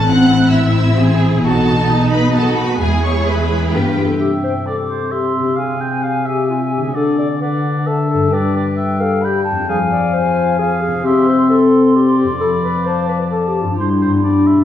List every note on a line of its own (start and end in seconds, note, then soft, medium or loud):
0.00 1.39 A1 medium
0.00 2.83 A3 medium
0.07 1.46 A2 medium
0.07 1.41 C4 medium
0.07 0.52 C4 medium
0.07 1.41 E4 medium
0.07 0.53 F#5 medium
0.07 0.52 F#6 loud
0.31 2.83 C5 soft
0.52 0.98 E4 medium
0.52 0.92 B4 soft
0.52 1.20 E5 medium
0.52 1.21 E6 medium
0.98 1.46 E3 medium
0.98 1.44 G#4 medium
1.20 2.82 A4 medium
1.42 2.81 B1 medium
1.42 2.82 B2 medium
1.42 2.78 B3 medium
1.42 2.80 D#4 medium
1.42 1.89 F#4 medium
1.42 2.08 A4 medium
1.42 2.08 A5 medium
1.67 2.12 F#4 soft
1.90 2.35 D#4 medium
1.90 2.29 G#4 soft
2.12 2.58 F#4 soft
2.12 2.35 B4 medium
2.12 2.35 B5 medium
2.34 2.83 F#3 soft
2.34 2.81 F#4 medium
2.34 2.58 A4 medium
2.34 2.57 A5 medium
2.56 2.83 F#4 medium
2.56 2.81 B4 medium
2.56 2.79 B5 medium
2.80 3.75 E2 medium
2.80 3.71 E2 medium
2.80 3.73 G#3 medium
2.80 3.71 E4 medium
2.80 3.71 G#4 medium
2.80 3.04 G#4 medium
2.80 3.03 G#5 medium
3.03 3.49 G#4 soft
3.03 3.27 C#5 medium
3.03 3.26 C#6 medium
3.27 3.66 A3 soft
3.27 3.74 B4 medium
3.27 3.73 B5 medium
3.50 3.75 G#4 soft
3.73 4.00 G2 medium
3.73 4.22 G2 medium
3.73 3.99 B3 soft
3.73 3.99 F4 soft
3.73 4.19 G4 medium
3.73 3.97 B4 medium
3.73 4.20 G5 medium
3.97 4.22 F4 soft
3.97 4.04 G4 medium
3.97 4.14 G4 soft
4.02 5.38 C3 soft
4.02 4.20 A4 medium
4.06 5.42 C4 soft
4.10 5.55 E4 soft
4.15 5.57 G4 soft
4.15 4.62 E5 soft
4.20 6.91 C3 medium
4.20 4.31 G4 medium
4.20 4.67 G5 soft
4.44 4.54 C5 medium
4.66 5.14 A4 medium
4.66 4.77 D5 soft
4.66 5.13 D6 soft
4.89 5.13 C5 soft
5.11 5.35 G4 medium
5.11 5.58 E5 soft
5.11 5.56 C6 soft
5.36 6.87 C3 soft
5.36 5.60 G4 medium
5.43 6.90 C4 soft
5.48 6.92 F4 soft
5.56 6.27 G#4 medium
5.56 5.82 F5 soft
5.56 6.92 G#5 soft
5.81 6.04 G5 soft
6.03 6.27 F5 soft
6.26 6.49 G4 medium
6.26 6.96 E5 soft
6.50 6.60 F4 medium
6.73 8.24 D3 soft
6.73 6.83 G4 medium
6.81 8.27 A3 soft
6.81 6.96 G#4 medium
6.85 8.21 D4 soft
6.90 8.31 F#4 soft
6.90 7.88 F#5 soft
6.94 8.31 D3 medium
6.94 7.18 A4 medium
6.94 7.40 D5 soft
7.19 7.29 D5 medium
7.41 7.89 B4 medium
7.41 7.88 D5 soft
7.86 8.09 A4 medium
7.86 8.35 E5 soft
7.86 8.32 A5 soft
8.10 9.61 G2 soft
8.10 8.34 A4 medium
8.18 9.63 G3 soft
8.22 9.65 D4 soft
8.27 9.67 G4 soft
8.31 9.65 G3 medium
8.31 9.02 B4 medium
8.31 8.55 D5 soft
8.31 8.76 G5 soft
8.56 8.66 D5 soft
8.77 9.03 E5 medium
8.77 9.22 G5 medium
9.01 9.23 A4 medium
9.01 9.26 F5 medium
9.21 9.45 G4 medium
9.21 9.69 G5 medium
9.21 9.43 B5 medium
9.44 9.70 A5 medium
9.51 10.97 F2 soft
9.55 10.89 C4 soft
9.59 11.02 F4 soft
9.64 11.04 G#4 soft
9.69 11.02 F3 medium
9.69 9.79 G#4 medium
9.69 10.58 F5 medium
9.69 10.13 G#5 medium
9.92 10.15 D5 medium
10.14 10.58 C5 medium
10.14 10.75 G#5 medium
10.59 10.81 G#4 medium
10.59 11.04 F5 medium
10.82 11.06 G#4 medium
10.87 12.34 C3 soft
10.87 12.27 C4 soft
10.96 12.38 E4 soft
11.00 14.23 C5 soft
11.04 12.25 C4 medium
11.04 11.29 G4 medium
11.04 11.67 E5 medium
11.04 11.46 C6 medium
11.27 11.49 C5 medium
11.49 11.97 A4 medium
11.49 12.43 C6 medium
11.96 12.17 G4 medium
11.96 13.74 D5 medium
12.18 12.28 G4 medium
12.23 13.71 F2 soft
12.28 13.64 C4 soft
12.32 13.75 F4 soft
12.37 13.77 A4 soft
12.37 12.51 A4 medium
12.41 13.74 F3 medium
12.41 12.88 B5 soft
12.63 12.87 B4 medium
12.85 13.08 C5 medium
12.85 13.30 A5 soft
13.08 13.19 B4 medium
13.30 13.49 A4 medium
13.30 13.76 A5 soft
13.47 13.64 G4 medium
13.61 14.05 G2 soft
13.61 13.75 F4 medium
13.65 14.19 C4 soft
13.70 14.14 D4 soft
13.74 14.22 E4 medium
13.74 14.19 G4 soft
13.74 14.23 C6 soft
13.78 14.64 G3 medium
13.78 13.90 C5 soft
14.02 14.12 C5 soft
14.06 14.63 G2 soft
14.11 14.59 B3 soft
14.15 14.64 D4 soft
14.20 14.64 G4 soft
14.20 14.48 D5 soft
14.20 14.64 B5 soft
14.24 14.64 D4 soft
14.47 14.64 E5 soft
14.52 14.64 B2 soft
14.57 14.64 A3 soft
14.57 14.64 B3 soft